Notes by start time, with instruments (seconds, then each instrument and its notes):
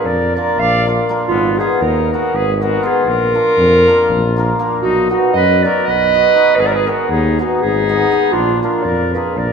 0.05 tuba F2, trumpet A#4, clarinet D5
0.35 hammered dulcimer A#3 D4 F4 A#4, trumpet A#4, clarinet D5
0.57 tuba A#1, trumpet D5, clarinet F5
0.86 hammered dulcimer A#3 D4 F4 A#4
1.09 hammered dulcimer A#3 D4 F4 A#4
1.28 tuba G#1, trumpet B3, clarinet F4
1.58 hammered dulcimer B3 D#4 G#4 B4, trumpet F4, clarinet G#4
1.81 tuba D#2, trumpet D#4, clarinet A#4
2.12 hammered dulcimer B3 D#4 G#4 B4, trumpet F#4, clarinet A#4
2.34 tuba G#1, trumpet G#4, clarinet B4
2.55 trumpet G#4, clarinet B4
2.60 hammered dulcimer B3 D#4 G#4 B4, trumpet F#4, clarinet A#4
2.83 hammered dulcimer B3 D#4 G#4 B4, trumpet F4, clarinet G#4
3.05 tuba A#1, trumpet F4, clarinet A#4
3.34 hammered dulcimer A#3 D4 F4 A#4
3.57 tuba F2
3.87 hammered dulcimer A#3 D4 F4 A#4
4.10 tuba A#1
4.37 hammered dulcimer A#3 D4 F4 A#4
4.59 hammered dulcimer A#3 D4 F4 A#4
4.81 tuba B1, trumpet D#4, clarinet F#4
5.10 hammered dulcimer B3 D#4 F#4 B4, trumpet D#4, clarinet F#4
5.33 tuba F#2, trumpet B4, clarinet D#5
5.63 hammered dulcimer B3 D#4 F#4 B4, trumpet A#4, clarinet D5
5.85 tuba B1, clarinet D#5
5.90 trumpet B4
6.14 hammered dulcimer B3 D#4 F#4 B4
6.35 hammered dulcimer B3 D#4 F#4 B4
6.56 tuba G#1, trumpet G#4, clarinet B4
6.65 trumpet A#4, clarinet D5
6.73 trumpet G#4, clarinet B4
6.87 hammered dulcimer B3 D#4 G#4 B4, trumpet F#4, clarinet A#4
7.10 tuba D#2, trumpet D#4, clarinet G#4
7.39 hammered dulcimer B3 D#4 G#4 B4, trumpet D#4, clarinet F#4
7.62 tuba G#1, trumpet D#4, clarinet G#4
7.89 hammered dulcimer B3 D#4 G#4 B4
8.12 hammered dulcimer B3 D#4 G#4 B4
8.32 tuba A#1, trumpet D4, clarinet F4
8.61 hammered dulcimer A#3 D4 F4 A#4, trumpet D4, clarinet F4
8.83 tuba F2, trumpet A#4, clarinet D5
9.13 hammered dulcimer A#3 D4 F4 A#4, trumpet G#4, clarinet B4
9.36 tuba A#1, trumpet A#4, clarinet D5